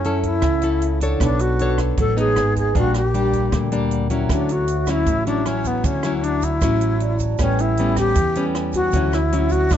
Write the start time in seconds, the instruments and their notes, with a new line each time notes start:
Already playing: upright bass F#2, nylon-string guitar F#3, alto flute C#4, vibraphone E4 A4 C#5 F#5
0.04 nylon-string guitar C#4 E4 A4, closed hi-hat
0.23 alto flute E4, kick, closed hi-hat
0.42 upright bass C#2, nylon-string guitar C#3, kick, cross-stick, closed hi-hat
0.62 nylon-string guitar C#4 E4 A4, closed hi-hat
0.82 closed hi-hat
1.01 nylon-string guitar D4 A4 C#5, vibraphone E4 A4 C#5 F#5, kick, closed hi-hat
1.18 upright bass B1, nylon-string guitar B3, vibraphone D4 B4, alto flute D4, kick, cross-stick, closed hi-hat
1.22 vibraphone C#5 A5
1.39 alto flute F#4, closed hi-hat
1.59 nylon-string guitar D4 A4 C#5, closed hi-hat
1.78 kick, cross-stick, closed hi-hat
1.97 upright bass A1, nylon-string guitar F#3, alto flute A4, kick, closed hi-hat
2.17 nylon-string guitar G#3 B3 D#4, alto flute G#4, closed hi-hat
2.34 upright bass G#1, vibraphone D#4 G#4 B4 G#5, cross-stick, closed hi-hat
2.56 alto flute G#4, kick, closed hi-hat
2.73 upright bass A#1, nylon-string guitar A#2 G3 A#3 D4, vibraphone D4 G4, kick, closed hi-hat
2.77 alto flute F#4, vibraphone A#4 G5
2.94 alto flute G4, cross-stick, closed hi-hat
3.14 nylon-string guitar G3 A#3 D4, closed hi-hat
3.33 kick, closed hi-hat
3.52 upright bass D2, nylon-string guitar A#2, kick, cross-stick, closed hi-hat
3.72 nylon-string guitar G3 A#3 D4, vibraphone A#5, closed hi-hat
3.91 vibraphone F#5, closed hi-hat
4.10 nylon-string guitar F#3 C#4 E4, vibraphone E5, kick, closed hi-hat
4.29 upright bass D2, nylon-string guitar D3, alto flute D4, vibraphone F#4 C#5 E5, kick, cross-stick, closed hi-hat, shaker
4.49 alto flute F#4, closed hi-hat, shaker
4.68 closed hi-hat, shaker
4.87 nylon-string guitar F#3 C#4 E4, alto flute E4, kick, cross-stick, closed hi-hat, shaker
5.06 upright bass A1, nylon-string guitar A2, kick, closed hi-hat, shaker
5.27 nylon-string guitar F#3 C#4 E4, alto flute D4, closed hi-hat, shaker
5.46 nylon-string guitar F#3 C#4 E4, alto flute C#4, cross-stick, closed hi-hat
5.64 alto flute B3, kick, closed hi-hat, shaker
5.84 upright bass D2, nylon-string guitar D3, alto flute C#4, kick, closed hi-hat, shaker
6.03 nylon-string guitar F#3 C#4 E4, cross-stick, closed hi-hat, shaker
6.23 alto flute D4, closed hi-hat
6.42 alto flute E4, kick, closed hi-hat, shaker
6.61 upright bass A1, nylon-string guitar A2 F#3 C#4 E4, kick, cross-stick, closed hi-hat, shaker
6.81 closed hi-hat, shaker
7.00 vibraphone D5, closed hi-hat
7.19 vibraphone A5, kick, closed hi-hat, shaker
7.36 upright bass A1, nylon-string guitar A2 G3 B3, vibraphone C#4 A4, alto flute C#4, kick, cross-stick, closed hi-hat, shaker
7.41 nylon-string guitar C#4, vibraphone B4 G5
7.59 alto flute E4, closed hi-hat, shaker
7.77 nylon-string guitar G3 B3 C#4, closed hi-hat
7.96 alto flute G4, kick, cross-stick, closed hi-hat, shaker
8.15 upright bass E2, nylon-string guitar E3, kick, closed hi-hat, shaker
8.35 nylon-string guitar G3 B3 C#4, closed hi-hat, shaker
8.55 cross-stick, closed hi-hat
8.73 alto flute F#4, kick, closed hi-hat, shaker
8.91 upright bass D2, nylon-string guitar D3 F#3, vibraphone F#4 C#5, kick, closed hi-hat, shaker
8.95 nylon-string guitar C#4 E4, vibraphone E5
9.12 alto flute E4, cross-stick, closed hi-hat, shaker
9.32 nylon-string guitar F#3 C#4 E4, closed hi-hat
9.49 alto flute F#4, kick, closed hi-hat, shaker
9.69 upright bass A1, nylon-string guitar A2, alto flute D4, kick, cross-stick, closed hi-hat, shaker